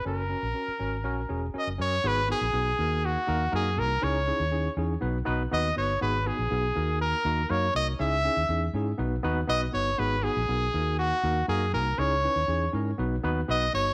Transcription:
<<
  \new Staff \with { instrumentName = "Trumpet" } { \time 4/4 \key gis \minor \tempo 4 = 121 ais'2. dis''8 cis''8 | b'8 gis'4. fis'4 gis'8 ais'8 | cis''4. r4. dis''8 cis''8 | b'8 gis'4. ais'4 cis''8 dis''8 |
e''4. r4. dis''8 cis''8 | b'8 gis'4. fis'4 gis'8 ais'8 | cis''4. r4. dis''8 cis''8 | }
  \new Staff \with { instrumentName = "Tine electric piano" } { \time 4/4 \key gis \minor <cis' fis' ais'>8 <cis' fis' ais'>8 <cis' fis' ais'>8 <cis' fis' ais'>8 <cis' fis' ais'>8 <cis' fis' gis'>8 <cis' fis' ais'>8 <cis' fis' ais'>8 | <b dis' fis' gis'>8 <b dis' fis' ais'>8 <b dis' fis' gis'>8 <ais dis' fis' ais'>4 <ais dis' fis' ais'>8 <ais dis' fis' ais'>8 <ais dis' fis' ais'>8 | <cis' dis' e' gis'>8 <cis' dis' e' gis'>8 <cis' dis' e' gis'>8 <cis' dis' e' gis'>8 <b dis' fis' b'>8 <b dis' fis' b'>8 <b dis' fis' b'>8 <b dis' fis' b'>8 | <b dis' fis' gis'>8 <b dis' fis' gis'>8 <b dis' fis' gis'>8 <ais dis' fis' ais'>4 <ais dis' fis' ais'>8 <ais dis' fis' ais'>8 <ais dis' fis' ais'>8 |
<cis' dis' e' gis'>8 <cis' dis' e' gis'>8 <cis' dis' e' gis'>8 <cis' dis' e' gis'>8 <b dis' fis' b'>8 <b dis' fis' b'>8 <b dis' fis' b'>8 <b dis' fis' b'>8 | <b dis' fis' gis'>8 <b dis' fis' gis'>8 <b dis' fis' ais'>8 <ais dis' eis' fis' ais'>4 <ais dis' fis' ais'>8 <ais dis' fis' ais'>8 <ais dis' fis' ais'>8 | <cis' dis' e' gis'>8 <cis' dis' e' b'>8 <cis' dis' e' gis'>8 <cis' dis' e' ais'>8 <b dis' fis' b'>8 <b dis' fis' b'>8 <b dis' fis' b'>8 <b dis' fis' cis''>8 | }
  \new Staff \with { instrumentName = "Fingered electric bass" } { \clef bass \time 4/4 \key gis \minor fis,,8. ais,,16 r8 gis,,8 ais,,8 e,,8 r16 fis,,16 fis,8 | gis,,8. ais,,16 b,,8 dis,4 dis,8 fis,8 bis,,8 | cis,8. dis,8. e,8 b,,8 b,,8 dis,8 g,,8 | gis,,8. ais,,16 b,,8 dis,4 dis,8 fis,8 bis,,8 |
cis,8. dis,16 e,8 gis,8 b,,8 dis,8 b,,8 g,,8 | gis,,8. ais,,16 b,,8 dis,4 dis,8 fis,8 bis,,8 | cis,8. dis,16 e,8 gis,8 b,,8 dis,8 b,,8 g,,8 | }
>>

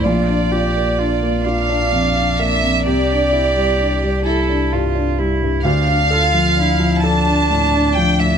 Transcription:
<<
  \new Staff \with { instrumentName = "Violin section" } { \time 6/8 \key d \minor \tempo 4. = 43 d''4. f''4 e''8 | d''4. a'8 r4 | f''4. a''4 g''16 e''16 | }
  \new Staff \with { instrumentName = "Cello" } { \time 6/8 \key d \minor f'8 g'8 f'8 d'4. | g'4. e'8 f'8 e'8 | d'8 f'8 e'8 d'4. | }
  \new Staff \with { instrumentName = "Grand piano" } { \time 6/8 \key d \minor bes,,16 d'16 f'16 bes16 d'16 bes16 f'16 d'16 f,16 d'16 bes16 f,16 | c,16 d'16 e'16 g16 d'16 g16 e'16 d'16 g,16 d'16 g16 g,16 | d,16 d'16 a'16 f16 d'16 f16 a'16 d'16 a,16 d'16 f16 a,16 | }
  \new Staff \with { instrumentName = "Sub bass" } { \clef bass \time 6/8 \key d \minor bes,,2. | c,2. | d,2. | }
>>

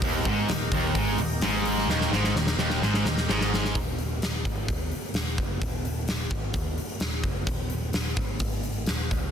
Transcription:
<<
  \new Staff \with { instrumentName = "Tonewheel organ" } { \time 4/4 \key ees \major \tempo 4 = 128 <ees' g' bes'>1~ | <ees' g' bes'>1 | r1 | r1 |
r1 | }
  \new Staff \with { instrumentName = "Distorted electric guitar" } { \clef bass \time 4/4 \key ees \major ees,8 aes,8 ees,8 ees,8 aes,8 ees,8 aes,4 | ees,8 aes,8 ees,8 ees,8 aes,8 ees,8 aes,4 | r1 | r1 |
r1 | }
  \new Staff \with { instrumentName = "Overdriven electric guitar" } { \clef bass \time 4/4 \key ees \major ees,8 aes,8 ees,8 ees,8 aes,8 ees,8 aes,4 | ees,8 aes,8 ees,8 ees,8 aes,8 ees,8 aes,4 | r1 | r1 |
r1 | }
  \new Staff \with { instrumentName = "Picked electric bass" } { \clef bass \time 4/4 \key ees \major ees,,8 aes,,8 ees,,8 ees,,8 aes,,8 ees,,8 aes,,4 | ees,,8 aes,,8 ees,,8 ees,,8 aes,,8 ees,,8 aes,,4 | ees,,4 ees,,8 aes,,8 ees,8 r8 ees,,8 ges,,8 | ees,,4 ees,,8 aes,,8 ees,8 r8 ees,,8 ges,,8 |
ees,,4 ees,,8 aes,,8 aes,,4 ees,,8 des,8 | }
  \new DrumStaff \with { instrumentName = "Drums" } \drummode { \time 4/4 <hho bd>8 <hho bd>8 <hho sn>8 <hho bd>8 <hho bd>8 hho8 <hho sn>8 hho16 sn16 | sn16 sn16 sn16 sn16 sn16 sn16 sn16 sn16 sn16 sn16 sn16 sn16 sn16 sn16 sn16 sn16 | <hho bd>8 hho8 <hho sn>8 <hho bd>8 <hho bd>8 hho8 <hho sn>8 <hho bd>8 | <hho bd>8 hho8 <hho sn>8 <hho bd>8 <hho bd>8 hho8 <hho sn>8 <hho bd>8 |
<hho bd>8 hho8 <hho sn>8 <hho bd>8 <hho bd>8 hho8 <hho sn>8 <hho bd>8 | }
>>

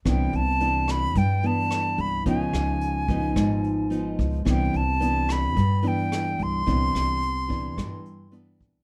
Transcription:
<<
  \new Staff \with { instrumentName = "Flute" } { \time 4/4 \key c \major \tempo 4 = 109 g''8 a''4 b''8 g''8 a''4 b''8 | aes''2.~ aes''8 r8 | g''8 a''4 b''4 g''4 c'''8~ | c'''2. r4 | }
  \new Staff \with { instrumentName = "Nylon-string guitar" } { \time 4/4 \key c \major << { <e b d'>8 r8 <e b d'>4 r8 <e b d'>4. | <f ces' ees'>4. <f ces' ees'>4. <f ces' ees'>4 | <e b d'>8 r8 <e b d'>4 r8 <e b d'>4. | <e b d'>4 r8 <e b d'>4. <e b d'>4 | } \\ { c2 g,2 | des2 aes,2 | c2 g,2 | c2 g,2 | } >> }
  \new Staff \with { instrumentName = "Upright bass" } { \clef bass \time 4/4 \key c \major c,8 c,4. g,4. c,8 | des,8 des,4. aes,,4. des,8 | c,8 c,4. g,4. c,8 | c,8 c,4. g,4. c,8 | }
  \new DrumStaff \with { instrumentName = "Drums" } \drummode { \time 4/4 <hh bd ss>8 hh8 hh8 <hh ss>8 <hh bd>8 hh8 <hh ss>8 hh8 | <hh bd>8 <hh ss>8 hh8 <hh bd>8 <hh bd ss>8 hh8 hh8 <hh bd>8 | <hh bd ss>8 hh8 hh8 <hh ss>8 <hh bd>8 hh8 <hh ss>8 hh8 | <hh bd>8 <hh ss>8 hh8 <hh bd>8 <hh bd ss>8 hh8 hh8 <hh bd>8 | }
>>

